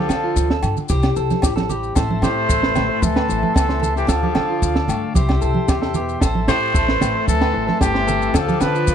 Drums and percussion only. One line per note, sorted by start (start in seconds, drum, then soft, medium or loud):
0.09 snare medium
0.09 low agogo medium
0.09 maracas medium
0.36 kick medium
0.36 maracas medium
0.50 snare medium
0.63 low conga medium
0.63 low agogo medium
0.63 maracas medium
0.77 low conga medium
0.77 maracas soft
0.89 kick medium
0.89 maracas medium
1.03 snare medium
1.03 low agogo medium
1.03 maracas soft
1.16 maracas medium
1.30 snare soft
1.30 high conga medium
1.30 maracas soft
1.42 kick medium
1.42 snare medium
1.42 low agogo medium
1.42 maracas medium
1.57 snare medium
1.57 high conga medium
1.57 maracas soft
1.70 low conga medium
1.70 maracas medium
1.83 maracas soft
1.96 kick medium
1.96 snare medium
1.96 low agogo medium
1.96 maracas medium
2.10 high conga medium
2.22 snare medium
2.22 high conga medium
2.22 low agogo medium
2.22 maracas medium
2.49 kick medium
2.49 maracas medium
2.63 snare medium
2.75 snare medium
2.75 low conga medium
2.75 low agogo medium
2.75 maracas medium
3.02 kick medium
3.02 high conga medium
3.02 maracas medium
3.16 snare medium
3.16 low agogo medium
3.30 maracas medium
3.43 high conga medium
3.56 kick medium
3.56 snare medium
3.56 low agogo medium
3.56 maracas medium
3.69 snare medium
3.83 low conga medium
3.83 maracas medium
3.96 snare soft
3.96 maracas soft
4.08 kick medium
4.08 snare medium
4.08 low agogo medium
4.08 maracas medium
4.23 high conga medium
4.35 snare medium
4.35 high conga medium
4.35 low agogo medium
4.62 kick medium
4.62 maracas medium
4.75 snare medium
4.88 low conga medium
4.88 low agogo medium
4.88 maracas medium
5.14 kick medium
5.14 high conga medium
5.14 maracas medium
5.29 snare medium
5.29 low agogo medium
5.42 maracas medium
5.55 high conga medium
5.68 kick medium
5.68 snare medium
5.68 low agogo medium
5.68 maracas medium
5.82 snare medium
5.94 low conga medium
5.94 maracas medium
6.09 maracas soft
6.21 kick medium
6.21 snare medium
6.21 low agogo medium
6.21 maracas medium
6.35 high conga medium
6.48 snare medium
6.48 high conga medium
6.48 low agogo medium
6.48 maracas medium
6.75 kick medium
6.75 maracas medium
6.88 snare medium
7.01 snare medium
7.01 low conga medium
7.01 low agogo medium
7.01 maracas medium
7.27 kick medium
7.27 high conga medium
7.27 maracas medium
7.41 snare medium
7.41 low agogo medium
7.68 snare soft
7.68 high conga medium
7.81 kick medium
7.81 snare medium
7.81 low agogo medium
7.81 maracas medium
7.95 snare medium
8.08 low conga medium
8.08 maracas medium
8.22 maracas soft
8.34 kick medium
8.34 snare medium
8.34 low agogo medium
8.34 maracas medium
8.48 snare soft
8.48 high conga medium
8.48 maracas soft
8.60 snare medium
8.60 low agogo medium
8.60 maracas medium
8.75 maracas soft
8.87 kick medium
8.87 maracas medium